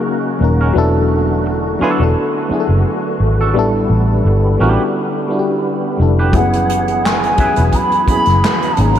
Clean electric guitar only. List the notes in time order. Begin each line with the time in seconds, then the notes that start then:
0.61 C#4 F#4 A#4
1.46 muted clean electric guitar stroke
1.81 D4 F#4 A4
3.41 D4 F#4 A4
4.27 muted clean electric guitar stroke
4.60 D4 G4 B4
6.19 D4 G4 B4
7.04 muted clean electric guitar stroke
7.39 E4 G#4 B4